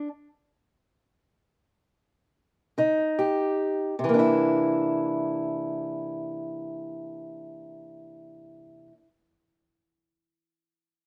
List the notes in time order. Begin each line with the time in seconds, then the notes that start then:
2.78 C#3 D#4
3.19 G4
3.99 C3
4.04 E3
4.09 A#3
4.14 D4
4.19 E4